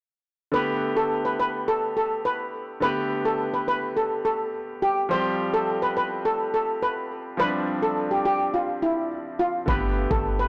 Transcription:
0.52 grand piano D3 A3 B3, steel pan B4
0.56 grand piano G4
0.97 steel pan A4
1.25 steel pan B4
1.40 steel pan B4
1.68 steel pan A4
1.97 steel pan A4
2.25 steel pan B4
2.80 grand piano D3 A3 B3, steel pan B4
2.85 grand piano G4
3.25 steel pan A4
3.54 steel pan B4
3.68 steel pan B4
3.97 steel pan A4
4.25 steel pan A4
4.82 steel pan G4
5.09 grand piano F3 G3 C4, steel pan C5
5.13 grand piano G4
5.54 steel pan A4
5.82 steel pan B4
5.97 steel pan B4
6.25 steel pan A4
6.54 steel pan A4
6.83 steel pan B4
7.37 grand piano F3 G3 C4, steel pan B4
7.42 grand piano D4
7.83 steel pan A4
8.11 steel pan G4
8.25 steel pan G4
8.54 steel pan F4
8.82 steel pan E4
9.39 steel pan F4
9.66 808-style bass G1, grand piano D3 A3 B3, steel pan B4, kick
9.70 grand piano G4
10.11 808-style bass G1, steel pan A4, kick
10.39 steel pan B4

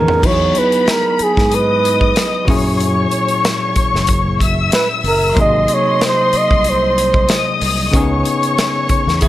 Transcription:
Already playing: tine electric piano E3 B3 C#4 D#4 G#4, clean electric guitar B3 G#4, flugelhorn A#4
0.08 floor tom
0.21 fingered electric bass E2, tine electric piano F#3 B3 D#4, string section B3 B5, kick, crash
0.25 tine electric piano E4 F#4, flugelhorn C#5
0.33 tine electric piano G#4
0.55 flugelhorn B4, closed hi-hat
0.72 closed hi-hat
0.88 flugelhorn A#4, snare, closed hi-hat
1.19 flugelhorn G#4, muted fingered electric bass stroke, closed hi-hat
1.37 fingered electric bass G#2, kick, snare
1.52 flugelhorn B4, string section D#5 D#6, closed hi-hat
1.85 closed hi-hat
2.01 kick
2.16 snare, closed hi-hat
2.45 fingered electric bass F#2, tine electric piano A#2 F#3 C#4, string section C#5 C#6, kick, open hi-hat
2.49 tine electric piano E4 G#4
2.80 closed hi-hat
3.11 closed hi-hat
3.28 closed hi-hat
3.45 snare, closed hi-hat
3.76 muted fingered electric bass stroke, kick, closed hi-hat
3.94 fingered electric bass F#1, snare
4.07 kick, closed hi-hat
4.40 string section E5 E6, kick, closed hi-hat
4.72 flugelhorn B4, snare, closed hi-hat
5.04 fingered electric bass F#1, flugelhorn A#4, open hi-hat
5.35 fingered electric bass G#1, tine electric piano C3 F#3 A#3 D#4, string section D#5 C6, kick, closed hi-hat
5.40 tine electric piano G#4, flugelhorn D#5
5.68 closed hi-hat
5.74 flugelhorn C#5
6.01 snare, closed hi-hat
6.06 flugelhorn C5
6.33 muted fingered electric bass stroke, closed hi-hat
6.38 flugelhorn D#5
6.50 fingered electric bass C2, kick
6.64 closed hi-hat
6.70 flugelhorn C5
6.98 closed hi-hat
7.14 kick
7.29 string section D#5 D#6, snare, closed hi-hat
7.61 fingered electric bass C2, open hi-hat
7.91 fingered electric bass C#2, tine electric piano C#3 B3 C#4 D#4, string section C#5 C#6, kick, closed hi-hat
7.97 tine electric piano G#4
8.25 closed hi-hat
8.43 closed hi-hat
8.58 snare, closed hi-hat
8.89 muted fingered electric bass stroke, kick, closed hi-hat
9.07 fingered electric bass E2, snare
9.21 string section B3 B5, clean electric guitar G#4 E5, kick, closed hi-hat

